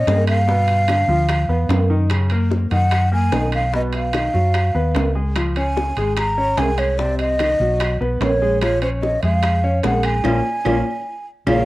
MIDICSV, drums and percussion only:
0, 0, Header, 1, 2, 480
1, 0, Start_track
1, 0, Key_signature, -5, "minor"
1, 0, Tempo, 406780
1, 568, Time_signature, 4, 2, 24, 8
1, 13748, End_track
2, 0, Start_track
2, 0, Title_t, "Drums"
2, 85, Note_on_c, 9, 65, 61
2, 85, Note_on_c, 9, 66, 75
2, 93, Note_on_c, 9, 60, 63
2, 93, Note_on_c, 9, 61, 78
2, 203, Note_off_c, 9, 65, 0
2, 203, Note_off_c, 9, 66, 0
2, 211, Note_off_c, 9, 60, 0
2, 211, Note_off_c, 9, 61, 0
2, 322, Note_on_c, 9, 65, 90
2, 326, Note_on_c, 9, 75, 62
2, 440, Note_off_c, 9, 65, 0
2, 444, Note_off_c, 9, 75, 0
2, 574, Note_on_c, 9, 60, 63
2, 692, Note_off_c, 9, 60, 0
2, 799, Note_on_c, 9, 65, 69
2, 819, Note_on_c, 9, 60, 31
2, 917, Note_off_c, 9, 65, 0
2, 937, Note_off_c, 9, 60, 0
2, 1037, Note_on_c, 9, 65, 85
2, 1037, Note_on_c, 9, 66, 57
2, 1046, Note_on_c, 9, 75, 66
2, 1055, Note_on_c, 9, 60, 55
2, 1155, Note_off_c, 9, 65, 0
2, 1155, Note_off_c, 9, 66, 0
2, 1164, Note_off_c, 9, 75, 0
2, 1173, Note_off_c, 9, 60, 0
2, 1289, Note_on_c, 9, 60, 34
2, 1407, Note_off_c, 9, 60, 0
2, 1517, Note_on_c, 9, 65, 87
2, 1521, Note_on_c, 9, 75, 63
2, 1526, Note_on_c, 9, 60, 63
2, 1635, Note_off_c, 9, 65, 0
2, 1639, Note_off_c, 9, 75, 0
2, 1644, Note_off_c, 9, 60, 0
2, 1771, Note_on_c, 9, 60, 32
2, 1889, Note_off_c, 9, 60, 0
2, 1997, Note_on_c, 9, 65, 61
2, 1997, Note_on_c, 9, 66, 78
2, 2010, Note_on_c, 9, 60, 64
2, 2010, Note_on_c, 9, 61, 76
2, 2115, Note_off_c, 9, 65, 0
2, 2115, Note_off_c, 9, 66, 0
2, 2128, Note_off_c, 9, 60, 0
2, 2128, Note_off_c, 9, 61, 0
2, 2476, Note_on_c, 9, 65, 92
2, 2482, Note_on_c, 9, 75, 62
2, 2489, Note_on_c, 9, 60, 61
2, 2594, Note_off_c, 9, 65, 0
2, 2600, Note_off_c, 9, 75, 0
2, 2607, Note_off_c, 9, 60, 0
2, 2713, Note_on_c, 9, 65, 68
2, 2831, Note_off_c, 9, 65, 0
2, 2956, Note_on_c, 9, 66, 59
2, 2966, Note_on_c, 9, 60, 57
2, 3074, Note_off_c, 9, 66, 0
2, 3084, Note_off_c, 9, 60, 0
2, 3200, Note_on_c, 9, 65, 66
2, 3318, Note_off_c, 9, 65, 0
2, 3435, Note_on_c, 9, 75, 60
2, 3436, Note_on_c, 9, 65, 87
2, 3446, Note_on_c, 9, 60, 61
2, 3553, Note_off_c, 9, 75, 0
2, 3554, Note_off_c, 9, 65, 0
2, 3564, Note_off_c, 9, 60, 0
2, 3919, Note_on_c, 9, 65, 63
2, 3919, Note_on_c, 9, 66, 76
2, 3921, Note_on_c, 9, 60, 61
2, 3921, Note_on_c, 9, 61, 77
2, 4037, Note_off_c, 9, 65, 0
2, 4037, Note_off_c, 9, 66, 0
2, 4039, Note_off_c, 9, 60, 0
2, 4039, Note_off_c, 9, 61, 0
2, 4155, Note_on_c, 9, 65, 84
2, 4158, Note_on_c, 9, 75, 63
2, 4273, Note_off_c, 9, 65, 0
2, 4276, Note_off_c, 9, 75, 0
2, 4407, Note_on_c, 9, 60, 62
2, 4525, Note_off_c, 9, 60, 0
2, 4632, Note_on_c, 9, 65, 68
2, 4655, Note_on_c, 9, 60, 31
2, 4750, Note_off_c, 9, 65, 0
2, 4773, Note_off_c, 9, 60, 0
2, 4875, Note_on_c, 9, 65, 91
2, 4875, Note_on_c, 9, 66, 54
2, 4876, Note_on_c, 9, 75, 64
2, 4891, Note_on_c, 9, 60, 60
2, 4993, Note_off_c, 9, 65, 0
2, 4993, Note_off_c, 9, 66, 0
2, 4994, Note_off_c, 9, 75, 0
2, 5009, Note_off_c, 9, 60, 0
2, 5130, Note_on_c, 9, 60, 34
2, 5248, Note_off_c, 9, 60, 0
2, 5359, Note_on_c, 9, 65, 86
2, 5361, Note_on_c, 9, 75, 63
2, 5369, Note_on_c, 9, 60, 58
2, 5477, Note_off_c, 9, 65, 0
2, 5479, Note_off_c, 9, 75, 0
2, 5487, Note_off_c, 9, 60, 0
2, 5616, Note_on_c, 9, 60, 35
2, 5734, Note_off_c, 9, 60, 0
2, 5839, Note_on_c, 9, 65, 65
2, 5839, Note_on_c, 9, 66, 75
2, 5857, Note_on_c, 9, 60, 62
2, 5857, Note_on_c, 9, 61, 73
2, 5957, Note_off_c, 9, 65, 0
2, 5957, Note_off_c, 9, 66, 0
2, 5975, Note_off_c, 9, 60, 0
2, 5975, Note_off_c, 9, 61, 0
2, 6321, Note_on_c, 9, 65, 90
2, 6325, Note_on_c, 9, 75, 59
2, 6328, Note_on_c, 9, 60, 63
2, 6439, Note_off_c, 9, 65, 0
2, 6443, Note_off_c, 9, 75, 0
2, 6446, Note_off_c, 9, 60, 0
2, 6561, Note_on_c, 9, 65, 68
2, 6679, Note_off_c, 9, 65, 0
2, 6805, Note_on_c, 9, 66, 57
2, 6812, Note_on_c, 9, 60, 61
2, 6923, Note_off_c, 9, 66, 0
2, 6930, Note_off_c, 9, 60, 0
2, 7042, Note_on_c, 9, 65, 67
2, 7160, Note_off_c, 9, 65, 0
2, 7278, Note_on_c, 9, 65, 93
2, 7287, Note_on_c, 9, 60, 65
2, 7287, Note_on_c, 9, 75, 64
2, 7396, Note_off_c, 9, 65, 0
2, 7405, Note_off_c, 9, 60, 0
2, 7405, Note_off_c, 9, 75, 0
2, 7760, Note_on_c, 9, 65, 64
2, 7760, Note_on_c, 9, 66, 75
2, 7765, Note_on_c, 9, 60, 62
2, 7765, Note_on_c, 9, 61, 75
2, 7878, Note_off_c, 9, 65, 0
2, 7878, Note_off_c, 9, 66, 0
2, 7883, Note_off_c, 9, 60, 0
2, 7883, Note_off_c, 9, 61, 0
2, 7999, Note_on_c, 9, 65, 89
2, 8011, Note_on_c, 9, 75, 62
2, 8117, Note_off_c, 9, 65, 0
2, 8129, Note_off_c, 9, 75, 0
2, 8248, Note_on_c, 9, 60, 63
2, 8366, Note_off_c, 9, 60, 0
2, 8483, Note_on_c, 9, 65, 67
2, 8491, Note_on_c, 9, 60, 30
2, 8601, Note_off_c, 9, 65, 0
2, 8609, Note_off_c, 9, 60, 0
2, 8724, Note_on_c, 9, 65, 85
2, 8724, Note_on_c, 9, 66, 58
2, 8733, Note_on_c, 9, 60, 57
2, 8733, Note_on_c, 9, 75, 67
2, 8842, Note_off_c, 9, 65, 0
2, 8842, Note_off_c, 9, 66, 0
2, 8851, Note_off_c, 9, 60, 0
2, 8851, Note_off_c, 9, 75, 0
2, 8973, Note_on_c, 9, 60, 33
2, 9091, Note_off_c, 9, 60, 0
2, 9205, Note_on_c, 9, 65, 90
2, 9211, Note_on_c, 9, 75, 65
2, 9215, Note_on_c, 9, 60, 63
2, 9323, Note_off_c, 9, 65, 0
2, 9329, Note_off_c, 9, 75, 0
2, 9333, Note_off_c, 9, 60, 0
2, 9462, Note_on_c, 9, 60, 32
2, 9580, Note_off_c, 9, 60, 0
2, 9685, Note_on_c, 9, 65, 63
2, 9685, Note_on_c, 9, 66, 80
2, 9697, Note_on_c, 9, 60, 66
2, 9697, Note_on_c, 9, 61, 74
2, 9803, Note_off_c, 9, 65, 0
2, 9803, Note_off_c, 9, 66, 0
2, 9815, Note_off_c, 9, 60, 0
2, 9815, Note_off_c, 9, 61, 0
2, 10166, Note_on_c, 9, 65, 92
2, 10171, Note_on_c, 9, 75, 58
2, 10178, Note_on_c, 9, 60, 63
2, 10284, Note_off_c, 9, 65, 0
2, 10289, Note_off_c, 9, 75, 0
2, 10296, Note_off_c, 9, 60, 0
2, 10406, Note_on_c, 9, 65, 71
2, 10524, Note_off_c, 9, 65, 0
2, 10648, Note_on_c, 9, 66, 58
2, 10658, Note_on_c, 9, 60, 58
2, 10766, Note_off_c, 9, 66, 0
2, 10776, Note_off_c, 9, 60, 0
2, 10887, Note_on_c, 9, 65, 65
2, 11005, Note_off_c, 9, 65, 0
2, 11124, Note_on_c, 9, 65, 87
2, 11130, Note_on_c, 9, 75, 65
2, 11134, Note_on_c, 9, 60, 61
2, 11242, Note_off_c, 9, 65, 0
2, 11248, Note_off_c, 9, 75, 0
2, 11252, Note_off_c, 9, 60, 0
2, 11606, Note_on_c, 9, 65, 64
2, 11606, Note_on_c, 9, 66, 71
2, 11614, Note_on_c, 9, 60, 63
2, 11614, Note_on_c, 9, 61, 77
2, 11724, Note_off_c, 9, 65, 0
2, 11724, Note_off_c, 9, 66, 0
2, 11732, Note_off_c, 9, 60, 0
2, 11732, Note_off_c, 9, 61, 0
2, 11840, Note_on_c, 9, 65, 87
2, 11855, Note_on_c, 9, 75, 63
2, 11958, Note_off_c, 9, 65, 0
2, 11973, Note_off_c, 9, 75, 0
2, 12081, Note_on_c, 9, 65, 96
2, 12091, Note_on_c, 9, 61, 90
2, 12091, Note_on_c, 9, 75, 83
2, 12199, Note_off_c, 9, 65, 0
2, 12209, Note_off_c, 9, 61, 0
2, 12209, Note_off_c, 9, 75, 0
2, 12567, Note_on_c, 9, 65, 96
2, 12572, Note_on_c, 9, 75, 94
2, 12580, Note_on_c, 9, 61, 93
2, 12685, Note_off_c, 9, 65, 0
2, 12690, Note_off_c, 9, 75, 0
2, 12698, Note_off_c, 9, 61, 0
2, 13531, Note_on_c, 9, 65, 92
2, 13533, Note_on_c, 9, 75, 95
2, 13535, Note_on_c, 9, 61, 88
2, 13649, Note_off_c, 9, 65, 0
2, 13651, Note_off_c, 9, 75, 0
2, 13653, Note_off_c, 9, 61, 0
2, 13748, End_track
0, 0, End_of_file